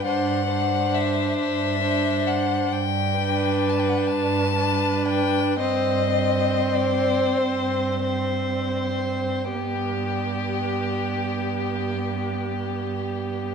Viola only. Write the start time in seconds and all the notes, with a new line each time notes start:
0.06 D4
0.50 D4
1.83 D4
3.17 D4
4.58 D4
5.59 C4
6.14 C4
8.05 C4
9.53 B3